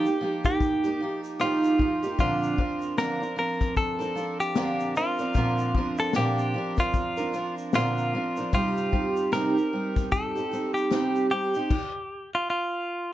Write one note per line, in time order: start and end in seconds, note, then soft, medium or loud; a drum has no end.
0.00 0.45 G4 loud
0.06 0.21 A#3 soft
0.06 0.22 D#4 soft
0.06 0.21 G4 soft
0.06 shaker soft
0.21 0.45 F3 medium
0.21 0.45 A#3 medium
0.21 0.45 D#4 medium
0.21 0.44 G4 medium
0.44 0.86 A#3 soft
0.44 0.85 D#4 soft
0.44 0.83 G4 soft
0.44 1.20 G4 medium
0.44 kick medium
0.44 shaker soft
0.60 kick medium
0.60 shaker medium
0.84 1.01 A#3 soft
0.84 1.01 D#4 soft
0.84 1.00 G4 medium
0.84 shaker soft
1.00 1.40 F3 medium
1.00 1.40 A#3 soft
1.00 1.41 D#4 medium
1.00 1.41 G4 medium
1.24 shaker medium
1.40 1.80 D#3 medium
1.40 1.77 F3 medium
1.40 1.79 A#3 medium
1.40 1.80 D#4 medium
1.40 2.19 F4 medium
1.40 1.81 G4 medium
1.40 cross-stick medium
1.40 shaker medium
1.64 shaker medium
1.78 2.02 F3 soft
1.78 2.03 A#3 soft
1.78 2.03 D#4 medium
1.78 2.02 G4 soft
1.78 kick medium
2.03 2.20 A#3 soft
2.03 2.20 D#4 soft
2.03 2.19 G4 medium
2.03 shaker soft
2.19 2.58 A#2 medium
2.19 2.59 D3 medium
2.19 2.56 F3 medium
2.19 2.57 C4 medium
2.19 2.58 D4 medium
2.19 2.98 F4 medium
2.19 2.59 A#4 medium
2.19 kick loud
2.19 shaker medium
2.43 shaker soft
2.57 2.97 F3 soft
2.57 2.98 C4 medium
2.57 2.98 D4 medium
2.57 2.98 A#4 medium
2.57 kick medium
2.81 shaker soft
2.97 3.21 A#2 medium
2.97 3.22 D3 medium
2.97 3.22 F3 medium
2.97 3.22 C4 medium
2.97 3.20 D4 medium
2.97 3.38 A#4 loud
2.97 3.19 A#4 medium
2.97 snare medium
2.97 shaker medium
3.20 3.35 F3 soft
3.20 3.37 C4 soft
3.20 3.37 D4 soft
3.20 3.37 A#4 soft
3.20 shaker soft
3.36 4.00 F3 medium
3.36 4.00 C4 medium
3.36 3.98 D4 medium
3.36 3.75 A#4 medium
3.36 3.97 A#4 medium
3.60 kick medium
3.60 snare soft
3.60 shaker soft
3.77 4.40 A4 medium
3.77 kick medium
3.77 shaker soft
3.99 4.14 F3 soft
3.99 4.15 C4 soft
3.99 4.16 D4 soft
3.99 4.16 A#4 soft
3.99 shaker soft
4.15 4.55 F3 medium
4.15 4.55 C4 medium
4.15 4.55 D4 medium
4.15 4.55 A#4 medium
4.15 shaker medium
4.40 4.97 G4 medium
4.40 shaker medium
4.55 4.95 A#2 medium
4.55 4.96 D3 medium
4.55 4.94 F3 medium
4.55 4.95 C4 medium
4.55 4.96 D4 medium
4.55 4.96 A#4 medium
4.55 snare loud
4.55 shaker medium
4.80 shaker soft
4.95 5.19 F3 soft
4.95 5.20 C4 medium
4.95 5.19 D4 medium
4.95 5.96 F4 medium
4.95 5.18 A#4 medium
4.95 shaker medium
5.18 5.35 F3 soft
5.18 5.36 C4 soft
5.18 5.36 D4 medium
5.18 5.35 A#4 soft
5.18 shaker medium
5.34 5.75 A#2 medium
5.34 5.75 D3 medium
5.34 5.74 F3 medium
5.34 5.76 C4 medium
5.34 5.76 D4 medium
5.34 5.76 A#4 medium
5.34 kick medium
5.34 shaker medium
5.58 shaker soft
5.75 6.15 F3 medium
5.75 6.15 C4 medium
5.75 6.16 D4 medium
5.75 6.16 A#4 medium
5.75 kick medium
5.98 6.14 A4 medium
5.98 shaker medium
6.13 6.55 A#2 medium
6.13 6.54 D3 medium
6.13 6.53 F3 medium
6.13 6.54 C4 medium
6.13 6.55 D4 medium
6.13 6.80 G4 medium
6.13 6.56 A#4 medium
6.13 snare loud
6.13 shaker medium
6.38 shaker soft
6.54 6.78 F3 medium
6.54 6.78 C4 medium
6.54 6.78 D4 medium
6.54 6.76 A#4 medium
6.77 7.19 F3 soft
6.77 7.19 C4 soft
6.77 7.18 D4 soft
6.77 7.54 F4 medium
6.77 7.16 A#4 soft
6.77 kick medium
6.77 snare soft
6.77 shaker soft
6.93 kick medium
6.93 shaker medium
7.17 7.33 C4 soft
7.17 7.34 D4 soft
7.17 7.33 A#4 medium
7.17 shaker soft
7.21 7.32 F3 soft
7.33 7.73 F3 medium
7.33 7.74 C4 medium
7.33 7.74 D4 medium
7.33 7.75 A#4 medium
7.33 shaker medium
7.58 shaker medium
7.73 8.13 A#2 medium
7.73 8.14 D3 medium
7.73 8.12 F3 medium
7.73 8.13 C4 medium
7.73 8.14 D4 medium
7.73 8.53 F4 medium
7.73 8.14 A#4 medium
7.73 snare loud
7.73 shaker medium
7.98 shaker soft
8.13 8.37 F3 soft
8.13 8.38 C4 medium
8.13 8.37 D4 medium
8.13 8.36 A#4 medium
8.36 8.53 F3 soft
8.36 8.53 C4 soft
8.36 8.53 D4 medium
8.36 8.53 A#4 medium
8.36 shaker soft
8.53 8.92 C3 medium
8.53 8.91 G3 medium
8.53 8.92 C4 medium
8.53 8.93 D#4 medium
8.53 9.32 F4 medium
8.53 8.93 G4 medium
8.53 kick loud
8.53 shaker medium
8.77 shaker medium
8.92 9.32 G3 medium
8.92 9.32 C4 medium
8.92 9.32 D#4 medium
8.92 9.33 G4 medium
8.92 kick medium
9.16 shaker soft
9.32 9.56 C3 medium
9.32 9.56 G3 medium
9.32 9.56 C4 medium
9.32 9.56 D#4 medium
9.32 9.54 G4 medium
9.32 10.12 A#4 medium
9.32 snare loud
9.32 shaker medium
9.55 9.72 C4 soft
9.55 9.73 D#4 soft
9.55 9.71 G4 soft
9.55 shaker soft
9.73 10.36 G3 medium
9.73 10.36 C4 medium
9.73 10.36 D#4 medium
9.73 10.34 G4 medium
9.96 kick medium
9.96 snare soft
9.96 shaker soft
10.12 10.74 A4 medium
10.12 kick medium
10.12 shaker medium
10.35 10.52 C4 soft
10.35 10.52 D#4 soft
10.35 10.51 G4 medium
10.35 shaker medium
10.51 10.91 G3 soft
10.51 10.91 C4 medium
10.51 10.91 D#4 medium
10.51 10.91 G4 medium
10.51 shaker medium
10.74 11.26 G4 medium
10.74 shaker medium
10.91 11.30 C3 medium
10.91 11.29 G3 medium
10.91 11.30 C4 medium
10.91 11.31 D#4 medium
10.91 11.31 G4 medium
10.91 snare medium
10.91 shaker medium
11.16 shaker soft
11.30 11.54 G3 medium
11.30 11.55 C4 medium
11.30 11.55 D#4 medium
11.30 12.30 G4 medium
11.30 11.55 G4 medium
11.54 11.71 D#4 medium
11.54 11.71 G4 medium
11.54 shaker soft
11.58 11.72 C4 soft
11.70 kick loud
11.70 crash medium
12.35 12.49 F4 medium
12.50 13.13 F4 medium